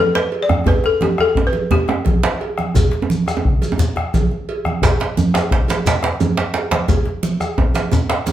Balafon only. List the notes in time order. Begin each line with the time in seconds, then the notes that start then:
0.00 A4
0.15 B4
0.43 D5
0.68 B4
0.86 A4
1.03 G4
1.21 A4
1.47 B4
1.72 G4